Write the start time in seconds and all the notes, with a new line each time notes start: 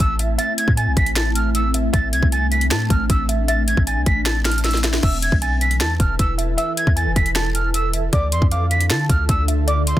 Already playing: A3 C4 E4 A5
0.00 A1 E6
0.19 E5, closed hi-hat
0.38 E5 A6, closed hi-hat
0.58 G#6, closed hi-hat
0.68 A2, kick
0.77 G#5 A6, closed hi-hat
0.87 B1
0.97 A1 B6, kick, closed hi-hat
1.06 closed hi-hat
1.16 A5 A6, finger snap, snare, closed hi-hat
1.35 F6, closed hi-hat
1.55 E6, closed hi-hat
1.74 E5, closed hi-hat
1.93 A1 D4 E5 A6, kick, closed hi-hat
2.13 C2 G#6, closed hi-hat
2.23 C2, kick
2.32 G#5 A6, closed hi-hat
2.52 B6, closed hi-hat
2.61 closed hi-hat
2.71 A2 A5 A6, finger snap, snare, closed hi-hat
2.90 A1 F6, kick, closed hi-hat
3.10 A1 E6, kick, closed hi-hat
3.29 E5, closed hi-hat
3.48 E5 A6, closed hi-hat
3.68 G#6, closed hi-hat
3.77 A1, kick
3.87 G#5 A6, closed hi-hat
3.97 C2
4.06 A1 B6, kick, closed hi-hat
4.26 A5 A6, finger snap, snare, closed hi-hat
4.45 F6, finger snap, snare, closed hi-hat
4.51 closed hi-hat
4.58 closed hi-hat
4.64 E6, snare, closed hi-hat
4.71 snare, closed hi-hat
4.77 closed hi-hat
4.84 E5, snare, closed hi-hat
4.93 snare
5.03 E1 E3 E4 A4 B4 E5 E6, kick, crash
5.22 G#6, closed hi-hat
5.32 B1, kick
5.42 G#5 A6, closed hi-hat
5.61 B6, closed hi-hat
5.71 closed hi-hat
5.80 E2 A5 A6, finger snap, snare, closed hi-hat
6.00 E1 F6, kick, closed hi-hat
6.19 E1 E6, kick, closed hi-hat
6.38 E5, closed hi-hat
6.58 E5 E6, closed hi-hat
6.77 G#6, closed hi-hat
6.87 E2, kick
6.96 G#5 A6, closed hi-hat
7.06 F1
7.16 E1 B6, kick, closed hi-hat
7.26 closed hi-hat
7.35 A5 A6, finger snap, snare, closed hi-hat
7.55 F6, closed hi-hat
7.74 E6, closed hi-hat
7.93 E5, closed hi-hat
8.13 D2 D3 D4 F4 D5 D6, kick, closed hi-hat
8.32 F2 C6, closed hi-hat
8.42 F2, kick
8.51 F5 D6, closed hi-hat
8.71 B6, closed hi-hat
8.81 closed hi-hat
8.90 D3 A5 A6, finger snap, snare, closed hi-hat
9.10 D2 F6, kick, closed hi-hat
9.29 D2 E6, kick, closed hi-hat
9.48 E5, closed hi-hat
9.68 D5 D6, closed hi-hat
9.87 C6, closed hi-hat